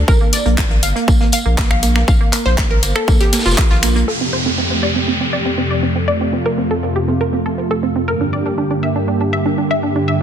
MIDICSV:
0, 0, Header, 1, 6, 480
1, 0, Start_track
1, 0, Key_signature, -1, "major"
1, 0, Tempo, 500000
1, 77, Time_signature, 4, 2, 24, 8
1, 9816, End_track
2, 0, Start_track
2, 0, Title_t, "Synth pluck"
2, 0, Program_c, 0, 84
2, 77, Note_on_c, 0, 70, 99
2, 146, Note_off_c, 0, 70, 0
2, 199, Note_on_c, 0, 58, 66
2, 266, Note_off_c, 0, 58, 0
2, 317, Note_on_c, 0, 74, 95
2, 386, Note_off_c, 0, 74, 0
2, 439, Note_on_c, 0, 58, 65
2, 506, Note_off_c, 0, 58, 0
2, 679, Note_on_c, 0, 58, 65
2, 746, Note_off_c, 0, 58, 0
2, 797, Note_on_c, 0, 77, 93
2, 866, Note_off_c, 0, 77, 0
2, 919, Note_on_c, 0, 58, 62
2, 986, Note_off_c, 0, 58, 0
2, 1037, Note_on_c, 0, 58, 66
2, 1106, Note_off_c, 0, 58, 0
2, 1159, Note_on_c, 0, 58, 68
2, 1226, Note_off_c, 0, 58, 0
2, 1276, Note_on_c, 0, 77, 95
2, 1346, Note_off_c, 0, 77, 0
2, 1398, Note_on_c, 0, 58, 62
2, 1465, Note_off_c, 0, 58, 0
2, 1515, Note_on_c, 0, 58, 66
2, 1585, Note_off_c, 0, 58, 0
2, 1638, Note_on_c, 0, 77, 96
2, 1705, Note_off_c, 0, 77, 0
2, 1756, Note_on_c, 0, 58, 65
2, 1826, Note_off_c, 0, 58, 0
2, 1878, Note_on_c, 0, 58, 64
2, 1946, Note_off_c, 0, 58, 0
2, 1996, Note_on_c, 0, 77, 94
2, 2066, Note_off_c, 0, 77, 0
2, 2118, Note_on_c, 0, 58, 65
2, 2185, Note_off_c, 0, 58, 0
2, 2235, Note_on_c, 0, 58, 64
2, 2306, Note_off_c, 0, 58, 0
2, 2358, Note_on_c, 0, 72, 92
2, 2425, Note_off_c, 0, 72, 0
2, 2475, Note_on_c, 0, 58, 65
2, 2546, Note_off_c, 0, 58, 0
2, 2598, Note_on_c, 0, 70, 90
2, 2665, Note_off_c, 0, 70, 0
2, 2715, Note_on_c, 0, 58, 65
2, 2786, Note_off_c, 0, 58, 0
2, 2837, Note_on_c, 0, 69, 88
2, 2905, Note_off_c, 0, 69, 0
2, 2955, Note_on_c, 0, 58, 66
2, 3025, Note_off_c, 0, 58, 0
2, 3077, Note_on_c, 0, 67, 91
2, 3145, Note_off_c, 0, 67, 0
2, 3196, Note_on_c, 0, 58, 66
2, 3266, Note_off_c, 0, 58, 0
2, 3318, Note_on_c, 0, 65, 90
2, 3385, Note_off_c, 0, 65, 0
2, 3436, Note_on_c, 0, 58, 64
2, 3506, Note_off_c, 0, 58, 0
2, 3558, Note_on_c, 0, 65, 97
2, 3626, Note_off_c, 0, 65, 0
2, 3676, Note_on_c, 0, 58, 66
2, 3746, Note_off_c, 0, 58, 0
2, 3799, Note_on_c, 0, 58, 65
2, 3866, Note_off_c, 0, 58, 0
2, 3916, Note_on_c, 0, 69, 100
2, 3986, Note_off_c, 0, 69, 0
2, 4039, Note_on_c, 0, 60, 65
2, 4106, Note_off_c, 0, 60, 0
2, 4156, Note_on_c, 0, 72, 90
2, 4226, Note_off_c, 0, 72, 0
2, 4279, Note_on_c, 0, 60, 64
2, 4346, Note_off_c, 0, 60, 0
2, 4397, Note_on_c, 0, 60, 63
2, 4466, Note_off_c, 0, 60, 0
2, 4519, Note_on_c, 0, 60, 63
2, 4586, Note_off_c, 0, 60, 0
2, 4636, Note_on_c, 0, 74, 92
2, 4706, Note_off_c, 0, 74, 0
2, 4759, Note_on_c, 0, 60, 62
2, 4826, Note_off_c, 0, 60, 0
2, 4876, Note_on_c, 0, 60, 63
2, 4946, Note_off_c, 0, 60, 0
2, 4999, Note_on_c, 0, 60, 66
2, 5066, Note_off_c, 0, 60, 0
2, 5116, Note_on_c, 0, 74, 91
2, 5186, Note_off_c, 0, 74, 0
2, 5239, Note_on_c, 0, 60, 62
2, 5306, Note_off_c, 0, 60, 0
2, 5355, Note_on_c, 0, 60, 63
2, 5426, Note_off_c, 0, 60, 0
2, 5478, Note_on_c, 0, 74, 93
2, 5545, Note_off_c, 0, 74, 0
2, 5596, Note_on_c, 0, 60, 63
2, 5666, Note_off_c, 0, 60, 0
2, 5718, Note_on_c, 0, 60, 62
2, 5785, Note_off_c, 0, 60, 0
2, 5835, Note_on_c, 0, 74, 93
2, 5905, Note_off_c, 0, 74, 0
2, 5959, Note_on_c, 0, 60, 65
2, 6026, Note_off_c, 0, 60, 0
2, 6076, Note_on_c, 0, 60, 62
2, 6146, Note_off_c, 0, 60, 0
2, 6199, Note_on_c, 0, 70, 91
2, 6266, Note_off_c, 0, 70, 0
2, 6317, Note_on_c, 0, 60, 64
2, 6386, Note_off_c, 0, 60, 0
2, 6440, Note_on_c, 0, 69, 86
2, 6506, Note_off_c, 0, 69, 0
2, 6557, Note_on_c, 0, 60, 64
2, 6626, Note_off_c, 0, 60, 0
2, 6679, Note_on_c, 0, 67, 86
2, 6746, Note_off_c, 0, 67, 0
2, 6797, Note_on_c, 0, 60, 63
2, 6866, Note_off_c, 0, 60, 0
2, 6920, Note_on_c, 0, 70, 89
2, 6986, Note_off_c, 0, 70, 0
2, 7037, Note_on_c, 0, 60, 63
2, 7107, Note_off_c, 0, 60, 0
2, 7159, Note_on_c, 0, 69, 88
2, 7226, Note_off_c, 0, 69, 0
2, 7277, Note_on_c, 0, 60, 64
2, 7346, Note_off_c, 0, 60, 0
2, 7399, Note_on_c, 0, 69, 93
2, 7466, Note_off_c, 0, 69, 0
2, 7517, Note_on_c, 0, 60, 63
2, 7587, Note_off_c, 0, 60, 0
2, 7639, Note_on_c, 0, 60, 64
2, 7706, Note_off_c, 0, 60, 0
2, 7756, Note_on_c, 0, 70, 96
2, 7826, Note_off_c, 0, 70, 0
2, 7879, Note_on_c, 0, 62, 63
2, 7946, Note_off_c, 0, 62, 0
2, 7996, Note_on_c, 0, 74, 89
2, 8066, Note_off_c, 0, 74, 0
2, 8119, Note_on_c, 0, 62, 64
2, 8186, Note_off_c, 0, 62, 0
2, 8237, Note_on_c, 0, 62, 62
2, 8306, Note_off_c, 0, 62, 0
2, 8359, Note_on_c, 0, 62, 63
2, 8426, Note_off_c, 0, 62, 0
2, 8476, Note_on_c, 0, 76, 90
2, 8546, Note_off_c, 0, 76, 0
2, 8599, Note_on_c, 0, 62, 62
2, 8666, Note_off_c, 0, 62, 0
2, 8717, Note_on_c, 0, 62, 64
2, 8786, Note_off_c, 0, 62, 0
2, 8839, Note_on_c, 0, 62, 62
2, 8906, Note_off_c, 0, 62, 0
2, 8957, Note_on_c, 0, 76, 94
2, 9026, Note_off_c, 0, 76, 0
2, 9080, Note_on_c, 0, 62, 62
2, 9146, Note_off_c, 0, 62, 0
2, 9197, Note_on_c, 0, 62, 64
2, 9267, Note_off_c, 0, 62, 0
2, 9319, Note_on_c, 0, 76, 92
2, 9386, Note_off_c, 0, 76, 0
2, 9436, Note_on_c, 0, 62, 64
2, 9506, Note_off_c, 0, 62, 0
2, 9560, Note_on_c, 0, 62, 63
2, 9626, Note_off_c, 0, 62, 0
2, 9676, Note_on_c, 0, 76, 93
2, 9746, Note_off_c, 0, 76, 0
2, 9816, End_track
3, 0, Start_track
3, 0, Title_t, "Analog synth pad"
3, 0, Program_c, 1, 89
3, 3916, Note_on_c, 1, 41, 80
3, 3916, Note_on_c, 1, 48, 72
3, 3916, Note_on_c, 1, 57, 71
3, 3916, Note_on_c, 1, 67, 86
3, 5817, Note_off_c, 1, 67, 0
3, 5835, Note_on_c, 1, 65, 85
3, 7718, Note_off_c, 1, 41, 0
3, 7718, Note_off_c, 1, 48, 0
3, 7718, Note_off_c, 1, 57, 0
3, 7737, Note_off_c, 1, 65, 0
3, 7757, Note_on_c, 1, 43, 80
3, 7757, Note_on_c, 1, 58, 71
3, 7757, Note_on_c, 1, 67, 87
3, 7758, Note_on_c, 1, 50, 74
3, 9816, Note_off_c, 1, 43, 0
3, 9816, Note_off_c, 1, 50, 0
3, 9816, Note_off_c, 1, 58, 0
3, 9816, Note_off_c, 1, 67, 0
3, 9816, End_track
4, 0, Start_track
4, 0, Title_t, "Sub bass"
4, 0, Program_c, 2, 38
4, 77, Note_on_c, 2, 34, 99
4, 173, Note_off_c, 2, 34, 0
4, 438, Note_on_c, 2, 34, 99
4, 756, Note_off_c, 2, 34, 0
4, 796, Note_on_c, 2, 31, 94
4, 893, Note_off_c, 2, 31, 0
4, 1036, Note_on_c, 2, 34, 96
4, 1133, Note_off_c, 2, 34, 0
4, 1398, Note_on_c, 2, 34, 100
4, 1586, Note_off_c, 2, 34, 0
4, 1638, Note_on_c, 2, 34, 103
4, 1956, Note_off_c, 2, 34, 0
4, 1996, Note_on_c, 2, 34, 99
4, 2093, Note_off_c, 2, 34, 0
4, 2358, Note_on_c, 2, 34, 101
4, 2676, Note_off_c, 2, 34, 0
4, 2715, Note_on_c, 2, 31, 92
4, 2812, Note_off_c, 2, 31, 0
4, 2956, Note_on_c, 2, 34, 87
4, 3053, Note_off_c, 2, 34, 0
4, 3318, Note_on_c, 2, 29, 93
4, 3411, Note_off_c, 2, 29, 0
4, 3558, Note_on_c, 2, 34, 82
4, 3876, Note_off_c, 2, 34, 0
4, 9816, End_track
5, 0, Start_track
5, 0, Title_t, "Downlifter"
5, 0, Program_c, 3, 103
5, 3916, Note_on_c, 3, 60, 70
5, 7756, Note_off_c, 3, 60, 0
5, 9816, End_track
6, 0, Start_track
6, 0, Title_t, "Drums"
6, 77, Note_on_c, 9, 36, 112
6, 77, Note_on_c, 9, 54, 84
6, 173, Note_off_c, 9, 36, 0
6, 173, Note_off_c, 9, 54, 0
6, 315, Note_on_c, 9, 46, 97
6, 321, Note_on_c, 9, 38, 45
6, 323, Note_on_c, 9, 54, 69
6, 411, Note_off_c, 9, 46, 0
6, 417, Note_off_c, 9, 38, 0
6, 419, Note_off_c, 9, 54, 0
6, 438, Note_on_c, 9, 42, 40
6, 534, Note_off_c, 9, 42, 0
6, 556, Note_on_c, 9, 38, 123
6, 556, Note_on_c, 9, 39, 115
6, 557, Note_on_c, 9, 36, 111
6, 558, Note_on_c, 9, 54, 86
6, 652, Note_off_c, 9, 38, 0
6, 652, Note_off_c, 9, 39, 0
6, 653, Note_off_c, 9, 36, 0
6, 654, Note_off_c, 9, 54, 0
6, 678, Note_on_c, 9, 42, 41
6, 774, Note_off_c, 9, 42, 0
6, 795, Note_on_c, 9, 46, 101
6, 803, Note_on_c, 9, 54, 72
6, 891, Note_off_c, 9, 46, 0
6, 899, Note_off_c, 9, 54, 0
6, 922, Note_on_c, 9, 42, 45
6, 1018, Note_off_c, 9, 42, 0
6, 1036, Note_on_c, 9, 36, 112
6, 1036, Note_on_c, 9, 54, 87
6, 1132, Note_off_c, 9, 36, 0
6, 1132, Note_off_c, 9, 54, 0
6, 1159, Note_on_c, 9, 38, 50
6, 1255, Note_off_c, 9, 38, 0
6, 1269, Note_on_c, 9, 54, 67
6, 1276, Note_on_c, 9, 46, 99
6, 1365, Note_off_c, 9, 54, 0
6, 1372, Note_off_c, 9, 46, 0
6, 1516, Note_on_c, 9, 36, 113
6, 1516, Note_on_c, 9, 39, 114
6, 1520, Note_on_c, 9, 54, 83
6, 1522, Note_on_c, 9, 38, 119
6, 1612, Note_off_c, 9, 36, 0
6, 1612, Note_off_c, 9, 39, 0
6, 1616, Note_off_c, 9, 54, 0
6, 1618, Note_off_c, 9, 38, 0
6, 1639, Note_on_c, 9, 26, 83
6, 1735, Note_off_c, 9, 26, 0
6, 1755, Note_on_c, 9, 46, 98
6, 1757, Note_on_c, 9, 54, 64
6, 1851, Note_off_c, 9, 46, 0
6, 1853, Note_off_c, 9, 54, 0
6, 1878, Note_on_c, 9, 26, 79
6, 1882, Note_on_c, 9, 38, 46
6, 1974, Note_off_c, 9, 26, 0
6, 1978, Note_off_c, 9, 38, 0
6, 1995, Note_on_c, 9, 54, 96
6, 1996, Note_on_c, 9, 36, 113
6, 2091, Note_off_c, 9, 54, 0
6, 2092, Note_off_c, 9, 36, 0
6, 2236, Note_on_c, 9, 39, 62
6, 2236, Note_on_c, 9, 46, 102
6, 2236, Note_on_c, 9, 54, 68
6, 2332, Note_off_c, 9, 39, 0
6, 2332, Note_off_c, 9, 46, 0
6, 2332, Note_off_c, 9, 54, 0
6, 2362, Note_on_c, 9, 38, 39
6, 2458, Note_off_c, 9, 38, 0
6, 2474, Note_on_c, 9, 54, 82
6, 2476, Note_on_c, 9, 36, 112
6, 2476, Note_on_c, 9, 38, 115
6, 2476, Note_on_c, 9, 39, 123
6, 2570, Note_off_c, 9, 54, 0
6, 2572, Note_off_c, 9, 36, 0
6, 2572, Note_off_c, 9, 38, 0
6, 2572, Note_off_c, 9, 39, 0
6, 2713, Note_on_c, 9, 54, 64
6, 2715, Note_on_c, 9, 46, 103
6, 2809, Note_off_c, 9, 54, 0
6, 2811, Note_off_c, 9, 46, 0
6, 2838, Note_on_c, 9, 26, 76
6, 2934, Note_off_c, 9, 26, 0
6, 2954, Note_on_c, 9, 54, 94
6, 2956, Note_on_c, 9, 36, 117
6, 3050, Note_off_c, 9, 54, 0
6, 3052, Note_off_c, 9, 36, 0
6, 3076, Note_on_c, 9, 38, 55
6, 3078, Note_on_c, 9, 46, 58
6, 3172, Note_off_c, 9, 38, 0
6, 3174, Note_off_c, 9, 46, 0
6, 3190, Note_on_c, 9, 38, 96
6, 3193, Note_on_c, 9, 54, 70
6, 3195, Note_on_c, 9, 46, 105
6, 3255, Note_off_c, 9, 38, 0
6, 3255, Note_on_c, 9, 38, 82
6, 3256, Note_off_c, 9, 54, 0
6, 3256, Note_on_c, 9, 54, 62
6, 3291, Note_off_c, 9, 46, 0
6, 3317, Note_off_c, 9, 38, 0
6, 3317, Note_off_c, 9, 54, 0
6, 3317, Note_on_c, 9, 38, 82
6, 3317, Note_on_c, 9, 54, 61
6, 3371, Note_off_c, 9, 54, 0
6, 3371, Note_on_c, 9, 54, 66
6, 3376, Note_off_c, 9, 38, 0
6, 3376, Note_on_c, 9, 38, 97
6, 3432, Note_off_c, 9, 38, 0
6, 3432, Note_on_c, 9, 38, 113
6, 3435, Note_on_c, 9, 39, 120
6, 3436, Note_on_c, 9, 36, 113
6, 3467, Note_off_c, 9, 54, 0
6, 3528, Note_off_c, 9, 38, 0
6, 3531, Note_off_c, 9, 39, 0
6, 3532, Note_off_c, 9, 36, 0
6, 3553, Note_on_c, 9, 38, 57
6, 3649, Note_off_c, 9, 38, 0
6, 3673, Note_on_c, 9, 54, 74
6, 3675, Note_on_c, 9, 26, 84
6, 3675, Note_on_c, 9, 46, 102
6, 3676, Note_on_c, 9, 38, 97
6, 3769, Note_off_c, 9, 54, 0
6, 3771, Note_off_c, 9, 26, 0
6, 3771, Note_off_c, 9, 46, 0
6, 3772, Note_off_c, 9, 38, 0
6, 3801, Note_on_c, 9, 42, 37
6, 3897, Note_off_c, 9, 42, 0
6, 9816, End_track
0, 0, End_of_file